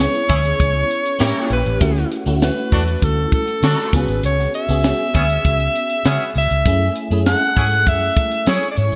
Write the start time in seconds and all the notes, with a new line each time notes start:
Already playing: C#5
0.00 B3 C#4 E4 G#4, snare, closed hi-hat
0.15 closed hi-hat
0.29 D2 C#4 E4 G#4, kick, closed hi-hat
0.45 closed hi-hat
0.60 C#2, kick, closed hi-hat
0.91 closed hi-hat
1.05 closed hi-hat
1.19 A2 A#3 C4 E4 G4 A#4, snare, closed hi-hat
1.26 C#4
1.50 A#1 B4, closed hi-hat
1.66 A1, closed hi-hat
1.80 D2 A3 C#4 E4 F#4, kick, closed hi-hat
1.96 snare, closed hi-hat
2.12 closed hi-hat
2.26 D2 A3 C#4 E4 F#4, closed hi-hat
2.42 A3 C#4 E4 F#4 B4, snare, closed hi-hat
2.72 E2 D4 F#4 A4, kick, snare, closed hi-hat
2.88 closed hi-hat
3.02 D2 A4, kick, closed hi-hat
3.32 A4, kick, closed hi-hat
3.48 closed hi-hat
3.63 D3 D4 F#4 A4, snare, closed hi-hat
3.78 closed hi-hat
3.93 C#2 B3 C#4 F4 G#4 B4, kick, closed hi-hat
4.00 F#4
4.08 G#1, closed hi-hat
4.23 C#2 C#5, closed hi-hat
4.39 snare
4.54 E5, closed hi-hat
4.69 C#2 B3 C#4 F#4 G#4, closed hi-hat
4.84 B3 C#4 F#4 G#4, snare, closed hi-hat
5.14 D2 B3 C#4 G#4, kick, closed hi-hat
5.30 closed hi-hat
5.45 C#2, kick, closed hi-hat
5.60 closed hi-hat
5.75 closed hi-hat
5.90 closed hi-hat
6.05 C#3 B3 C#4 G#4, snare, closed hi-hat
6.20 closed hi-hat
6.35 C#2 E5, open hi-hat
6.50 C#2, closed hi-hat
6.65 F#2 A3 C#4 E4 G#4, kick, closed hi-hat
6.96 closed hi-hat
7.11 F#2 A3 C#4 E4 G#4, closed hi-hat
7.26 C#4 E4 G#4 A4 F#5, snare, closed hi-hat
7.41 closed hi-hat
7.56 G#2 C#4 E4 G#4, kick, closed hi-hat
7.71 closed hi-hat
7.86 F#2 E5, kick, closed hi-hat
8.17 kick, closed hi-hat
8.31 closed hi-hat
8.46 F#3 C#4 E4 G#4 C#5, snare, closed hi-hat
8.71 D5
8.77 G#2 C#5, closed hi-hat
8.92 G#1, closed hi-hat